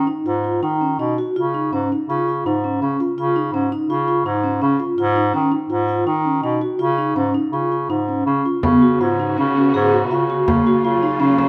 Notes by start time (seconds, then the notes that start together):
0.07 D#4
0.26 G#2 F4
0.44 F4
0.63 D#3 D#4
0.81 C#4
0.99 B2 D#4
1.18 F#4
1.36 C#3 F4
1.54 D#4
1.73 G#2 C#4
1.92 D#4
2.09 C#3 F4
2.28 F4
2.46 G#2 D#4
2.64 C#4
2.81 C#3 C#4
3.00 F4
3.17 C#3 F4
3.36 D#4
3.53 G#2 C#4
3.72 D#4
3.89 C#3 F4
4.08 F4
4.25 G#2 D#4
4.44 C#4
4.62 C#3 C#4
4.80 F4
4.98 G#2 F4
5.16 D#4
5.33 D#3 C#4
5.52 D#4
5.70 G#2 F4
5.88 F4
6.06 D#3 D#4
6.25 C#4
6.43 B2 D#4
6.61 F#4
6.79 C#3 F4
6.98 D#4
7.16 G#2 C#4
7.34 D#4
7.52 C#3 F4
7.72 F4
7.90 G#2 D#4
8.08 C#4
8.26 C#3 C#4
8.45 F4
8.63 C#3 B3 F#4, frame drum
8.82 F#4, frame drum
9.01 G#2 F4
9.20 D#4
9.38 C#3 C#4
9.56 C#4
9.74 G#2 G#4
9.93 F#4, frame drum
10.11 C#3 F4
10.30 F#4
10.47 C#3 F#3 A#3 F4, frame drum
10.67 F#4
10.84 C#3 F4
11.03 D#4
11.20 C#3 C#4
11.38 C#4, frame drum